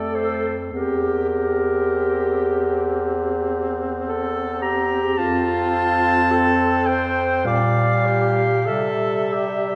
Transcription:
0.00 0.69 F2 soft
0.00 0.55 A3 soft
0.00 0.57 A4 soft
0.00 0.16 D5 medium
0.15 0.56 C5 medium
0.72 5.01 E2 soft
0.72 5.13 C4 soft
0.72 1.29 G4 soft
0.72 4.04 A#4 medium
1.29 3.77 G4 medium
4.08 4.64 A4 medium
4.62 5.20 G4 medium
4.62 5.19 A#5 medium
5.17 7.47 F2 medium
5.17 7.46 C4 medium
5.17 6.33 F4 medium
5.17 6.87 A5 loud
6.32 6.91 A4 medium
6.86 7.46 C5 medium
6.86 7.46 G5 medium
7.45 8.68 A#2 medium
7.45 8.50 G3 medium
7.45 8.08 D5 medium
7.45 8.69 F5 medium
8.06 8.67 G4 medium
8.66 9.75 C3 medium
8.66 9.75 G3 medium
8.66 9.35 A4 medium
8.66 9.75 E5 medium
9.34 9.75 G4 medium

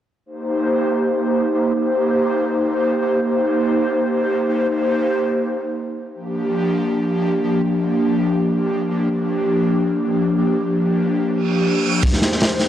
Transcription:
0.26 1.16 A#3 loud
0.26 1.16 D#4 medium
0.26 1.16 G4 medium
0.26 1.16 C5 loud
1.18 1.53 A#3 medium
1.18 1.53 D#4 medium
1.18 1.53 G4 medium
1.18 1.53 C5 loud
1.55 1.71 A#3 medium
1.55 1.71 D#4 medium
1.55 1.71 G4 medium
1.55 1.71 C5 medium
1.73 2.63 A#3 loud
1.73 2.63 D#4 medium
1.73 2.63 G4 medium
1.73 2.63 C5 loud
2.65 3.00 A#3 medium
2.65 3.00 D#4 medium
2.65 3.00 G4 medium
2.65 3.00 C5 loud
3.02 3.18 A#3 medium
3.02 3.18 D#4 medium
3.02 3.18 G4 medium
3.02 3.18 C5 medium
3.20 4.10 A#3 medium
3.20 4.10 D#4 medium
3.20 4.10 G4 medium
3.20 4.10 C5 loud
4.12 4.47 A#3 medium
4.12 4.47 D#4 medium
4.12 4.47 G4 medium
4.12 4.47 C5 loud
4.49 4.66 A#3 medium
4.49 4.66 D#4 medium
4.49 4.65 G4 medium
4.49 4.65 C5 medium
4.67 5.57 A#3 loud
4.67 5.57 D#4 medium
4.67 5.58 G4 medium
4.67 5.58 C5 loud
6.15 7.05 F3 loud
6.15 7.05 A#3 medium
6.15 7.05 D4 medium
6.15 7.05 G4 loud
7.07 7.42 F3 medium
7.07 7.42 A#3 medium
7.07 7.42 D4 medium
7.07 7.42 G4 loud
7.44 7.60 F3 medium
7.44 7.60 A#3 medium
7.44 7.60 D4 medium
7.44 7.60 G4 medium
7.62 8.52 F3 loud
7.62 8.52 A#3 medium
7.62 8.52 D4 medium
7.62 8.52 G4 loud
8.54 8.89 F3 medium
8.54 8.89 A#3 medium
8.54 8.89 D4 medium
8.54 8.89 G4 loud
8.91 9.07 F3 medium
8.91 9.07 A#3 medium
8.91 9.07 D4 medium
8.91 9.07 G4 medium
9.09 9.99 F3 loud
9.09 9.99 A#3 medium
9.09 9.99 D4 medium
9.09 9.99 G4 loud
10.01 10.36 F3 loud
10.01 10.36 A#3 medium
10.01 10.36 D4 medium
10.01 10.36 G4 loud
10.38 10.55 F3 medium
10.38 10.54 A#3 medium
10.38 10.54 D4 medium
10.38 10.55 G4 loud
10.57 11.47 F3 loud
10.57 11.47 A#3 medium
10.57 11.47 D4 medium
10.57 11.47 G4 loud
11.30 reverse cymbal medium
11.49 11.83 F3 medium
11.49 11.83 A#3 medium
11.49 11.83 D4 medium
11.49 11.83 G4 loud
11.86 12.02 F3 medium
11.86 12.02 A#3 medium
11.86 12.02 D4 medium
11.86 12.02 G4 medium
12.03 12.68 A#3 loud
12.03 12.68 D#4 medium
12.03 12.68 G4 medium
12.03 12.68 C5 loud
12.03 kick medium
12.03 open hi-hat medium
12.13 snare soft
12.22 snare medium
12.22 open hi-hat medium
12.32 snare soft
12.40 snare loud
12.40 open hi-hat medium
12.59 snare soft
12.59 open hi-hat medium

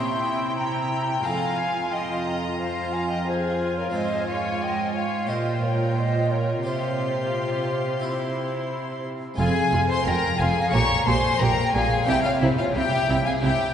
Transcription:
0.00 1.21 C3 soft
0.00 1.25 C3 soft
0.00 1.20 C4 soft
0.00 1.21 E4 soft
0.00 1.25 E4 soft
0.00 0.56 E5 soft
0.00 0.56 G5 medium
0.00 0.56 C6 medium
0.57 1.24 G5 medium
0.57 0.89 G5 soft
0.57 1.27 A#5 medium
0.90 1.24 G5 medium
1.21 3.94 F2 medium
1.21 3.88 G#3 soft
1.21 3.89 C4 soft
1.21 3.90 F4 soft
1.21 6.61 F4 soft
1.21 1.92 F5 medium
1.21 1.58 A#5 medium
1.26 3.90 F2 soft
1.26 1.93 G#5 medium
1.57 1.92 G#5 soft
1.91 2.60 D#5 medium
1.91 2.30 G5 medium
1.91 2.25 C6 medium
2.23 3.23 A#5 medium
2.59 2.93 C5 medium
2.59 2.94 F5 medium
2.93 3.10 F5 medium
2.93 3.12 G#5 medium
3.10 3.26 D#5 soft
3.10 3.26 G5 medium
3.26 3.76 G#4 medium
3.26 3.79 C5 medium
3.26 3.92 G#5 medium
3.78 3.95 A#4 soft
3.78 3.94 C#5 medium
3.90 5.26 G#2 soft
3.90 5.23 G#3 soft
3.90 5.24 C4 soft
3.90 5.25 F4 soft
3.90 5.26 G#5 medium
3.94 5.25 G#2 soft
3.94 4.28 C5 medium
3.94 4.27 D#5 medium
4.28 4.61 C#5 medium
4.28 4.65 F5 medium
4.63 4.96 D#5 medium
4.63 4.95 G5 medium
4.95 5.28 C#5 medium
4.95 5.31 F5 medium
5.27 6.65 A#2 soft
5.27 6.61 A#2 soft
5.27 6.60 F4 soft
5.27 6.61 G4 soft
5.27 5.63 C5 soft
5.27 5.63 D#5 medium
5.27 6.66 G5 soft
5.63 5.97 A#4 soft
5.63 5.96 C#5 medium
5.97 6.31 C5 medium
5.97 6.33 D#5 medium
6.31 6.65 A#4 soft
6.31 6.67 C#5 medium
6.63 9.15 C3 soft
6.63 7.97 F4 soft
6.63 7.99 F4 soft
6.63 7.98 G4 soft
6.63 9.01 G4 medium
6.63 9.05 C5 medium
6.63 9.01 C6 medium
8.00 9.34 E4 soft
8.00 9.18 E4 soft
8.00 9.34 G4 soft
9.34 10.67 G#3 soft
9.34 10.68 C4 soft
9.34 10.68 F4 medium
9.34 9.85 F5 medium
9.38 9.46 F1 medium
9.38 9.69 F2 medium
9.38 9.47 F2 medium
9.38 9.47 F4 medium
9.38 9.86 G#4 medium
9.38 9.86 G#5 medium
9.72 9.80 F1 medium
9.72 9.81 F2 medium
9.72 10.03 F2 medium
9.72 9.81 F4 medium
9.89 10.06 C5 medium
9.89 10.06 G#5 medium
9.89 10.07 C6 medium
10.05 10.13 F1 medium
10.05 10.37 F2 medium
10.05 10.14 F2 medium
10.05 10.15 F4 medium
10.05 10.39 A#4 medium
10.05 10.41 G5 medium
10.05 10.40 A#5 medium
10.39 10.47 F1 medium
10.39 10.70 F2 medium
10.39 10.49 F2 medium
10.39 10.48 F4 medium
10.39 10.72 G#4 medium
10.39 10.76 F5 medium
10.39 10.73 G#5 medium
10.69 10.81 A#1 medium
10.69 12.01 A#3 medium
10.69 12.03 C#4 soft
10.69 12.04 G4 soft
10.69 11.06 C#5 medium
10.69 11.06 C#6 medium
10.74 10.82 A#2 medium
10.74 11.04 A#2 medium
10.74 10.82 G4 medium
10.74 11.09 A#5 medium
11.06 11.15 A#1 medium
11.06 11.37 A#2 medium
11.06 11.15 A#2 medium
11.06 11.16 G4 medium
11.06 11.40 C5 medium
11.06 11.44 G#5 medium
11.06 11.40 C6 medium
11.39 11.49 A#1 medium
11.39 11.71 A#2 medium
11.39 11.49 A#2 medium
11.39 11.49 G4 medium
11.39 11.74 A#4 medium
11.39 11.75 G5 medium
11.39 11.74 A#5 medium
11.73 11.82 A#1 medium
11.73 12.04 A#2 medium
11.73 11.82 A#2 medium
11.73 11.83 G4 medium
11.73 12.07 G#4 medium
11.73 12.11 F5 medium
11.73 12.06 G#5 medium
12.03 13.74 A#3 medium
12.03 13.74 C4 medium
12.03 13.74 E4 medium
12.03 12.23 G5 loud
12.07 12.17 C2 medium
12.07 12.38 C3 medium
12.07 12.16 C3 medium
12.07 12.16 E4 medium
12.07 12.14 G4 medium
12.07 12.28 E5 medium
12.24 12.31 F4 medium
12.24 12.42 C#5 medium
12.24 12.41 F5 medium
12.39 12.50 C2 medium
12.39 12.72 C3 medium
12.39 12.50 C3 medium
12.39 12.49 E4 medium
12.39 12.48 E4 medium
12.39 12.49 C5 medium
12.39 12.46 E5 medium
12.58 12.75 F4 medium
12.58 12.76 C#5 medium
12.58 12.65 F5 medium
12.74 12.84 C2 medium
12.74 13.05 C3 medium
12.74 12.83 C3 medium
12.74 12.83 E4 medium
12.74 13.25 G4 medium
12.74 13.28 E5 medium
12.74 13.24 G5 medium
13.09 13.18 C2 medium
13.09 13.17 C3 medium
13.09 13.39 C3 medium
13.09 13.17 E4 medium
13.25 13.42 G#4 medium
13.25 13.43 F5 medium
13.25 13.32 G#5 medium
13.42 13.51 C2 medium
13.42 13.50 C3 medium
13.42 13.73 C3 medium
13.42 13.50 E4 medium
13.42 13.74 G4 medium
13.42 13.74 E5 medium
13.42 13.74 G5 medium

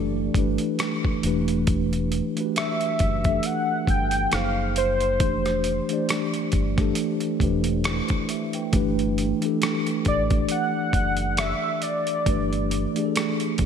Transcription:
0.00 0.29 F#1 medium
0.00 0.34 E3 medium
0.00 0.36 A3 medium
0.00 0.37 D4 medium
0.00 0.38 G4 medium
0.00 0.28 A4 medium
0.00 0.39 B4 medium
0.00 1.25 D5 medium
0.34 0.56 G1 medium
0.34 1.11 E3 medium
0.34 1.12 A3 medium
0.34 1.12 D4 medium
0.34 1.13 G4 medium
0.34 kick medium
0.34 closed hi-hat medium
0.39 1.13 B4 medium
0.58 closed hi-hat soft
0.79 cross-stick medium
0.79 closed hi-hat medium
1.05 kick medium
1.22 2.20 E1 medium
1.22 2.17 E3 medium
1.22 2.17 A3 medium
1.22 2.18 D4 medium
1.22 closed hi-hat medium
1.26 2.19 G4 medium
1.26 2.19 B4 medium
1.48 closed hi-hat soft
1.67 kick loud
1.67 closed hi-hat medium
1.93 closed hi-hat soft
2.12 closed hi-hat medium
2.35 3.09 E3 medium
2.35 3.09 A3 medium
2.35 3.10 D4 medium
2.35 2.43 F#4 soft
2.35 closed hi-hat soft
2.40 3.11 B4 medium
2.46 3.14 G4 medium
2.56 3.47 E5 medium
2.56 cross-stick loud
2.56 closed hi-hat medium
2.81 closed hi-hat soft
2.99 3.38 F#1 medium
2.99 kick medium
2.99 closed hi-hat medium
3.24 4.32 E3 medium
3.24 4.32 A3 medium
3.24 4.33 D4 medium
3.24 kick medium
3.24 closed hi-hat soft
3.28 4.34 G4 medium
3.28 4.34 A4 medium
3.43 3.89 F#5 loud
3.43 closed hi-hat medium
3.87 4.26 G1 medium
3.87 4.35 G5 loud
3.87 kick medium
3.87 closed hi-hat soft
4.11 closed hi-hat soft
4.30 5.21 F#1 medium
4.30 5.08 F3 medium
4.30 5.08 A#3 medium
4.30 5.09 D#4 medium
4.30 5.09 G#4 medium
4.30 4.77 F5 medium
4.30 cross-stick medium
4.30 closed hi-hat medium
4.36 5.10 C5 medium
4.76 6.05 C5 medium
4.76 closed hi-hat medium
5.01 closed hi-hat soft
5.19 5.79 F1 medium
5.19 5.77 E3 medium
5.19 5.78 A3 medium
5.19 5.78 D4 medium
5.19 kick loud
5.19 closed hi-hat medium
5.23 5.79 G4 medium
5.23 5.80 C5 medium
5.46 cross-stick soft
5.46 closed hi-hat soft
5.64 closed hi-hat medium
5.89 6.62 E3 medium
5.89 6.62 A3 medium
5.89 6.63 D4 medium
5.89 6.63 G4 medium
5.89 closed hi-hat soft
5.93 6.64 D5 medium
6.09 cross-stick medium
6.09 closed hi-hat medium
6.34 closed hi-hat soft
6.52 6.91 G1 medium
6.52 kick medium
6.52 closed hi-hat medium
6.76 7.31 E3 medium
6.76 7.32 A3 medium
6.76 7.32 D4 medium
6.76 7.33 G4 medium
6.76 kick medium
6.76 cross-stick soft
6.76 closed hi-hat soft
6.81 7.34 A4 medium
6.95 closed hi-hat medium
7.20 closed hi-hat soft
7.40 8.00 E1 medium
7.40 8.17 E3 medium
7.40 8.17 A3 medium
7.40 8.18 D4 medium
7.40 7.86 G4 medium
7.40 kick medium
7.40 closed hi-hat medium
7.44 7.87 B4 medium
7.64 closed hi-hat soft
7.84 cross-stick loud
7.84 closed hi-hat medium
8.08 kick medium
8.08 closed hi-hat soft
8.29 8.53 G4 soft
8.29 8.53 E5 medium
8.29 closed hi-hat medium
8.53 8.75 B4 soft
8.53 8.96 G5 medium
8.53 closed hi-hat soft
8.72 9.32 G1 medium
8.72 9.30 E3 medium
8.72 9.30 A3 medium
8.72 9.31 D4 medium
8.72 9.32 G4 medium
8.72 kick loud
8.72 closed hi-hat medium
8.76 9.32 B4 loud
8.99 closed hi-hat soft
9.18 closed hi-hat medium
9.41 10.14 E3 medium
9.41 10.15 A3 medium
9.41 10.15 D4 medium
9.41 10.16 G4 medium
9.41 closed hi-hat soft
9.46 10.17 A4 medium
9.62 cross-stick loud
9.62 closed hi-hat medium
9.87 closed hi-hat soft
10.05 10.44 A1 medium
10.05 10.22 D5 medium
10.05 kick medium
10.05 closed hi-hat soft
10.29 11.77 E3 medium
10.29 11.77 A3 medium
10.29 11.78 D4 medium
10.29 11.79 G4 medium
10.29 kick medium
10.29 closed hi-hat soft
10.34 11.79 D5 medium
10.49 11.40 F#5 loud
10.49 closed hi-hat medium
10.93 11.52 F#1 medium
10.93 kick medium
10.93 closed hi-hat medium
11.17 closed hi-hat soft
11.37 11.84 E5 medium
11.37 cross-stick medium
11.37 closed hi-hat medium
11.82 13.15 D5 medium
11.82 closed hi-hat medium
12.07 closed hi-hat soft
12.25 12.85 G1 medium
12.25 12.83 E3 medium
12.25 12.83 A3 medium
12.25 12.84 D4 medium
12.25 12.85 G4 medium
12.25 kick loud
12.25 closed hi-hat medium
12.30 12.85 B4 medium
12.53 closed hi-hat soft
12.71 closed hi-hat medium
12.94 13.66 E3 medium
12.94 13.66 A3 medium
12.94 13.66 D4 medium
12.94 13.66 G4 medium
12.94 closed hi-hat soft
12.99 13.02 G#4 medium
13.05 13.66 A4 medium
13.16 cross-stick medium
13.16 closed hi-hat medium
13.40 closed hi-hat soft
13.58 13.66 A1 medium
13.58 kick medium
13.58 closed hi-hat medium

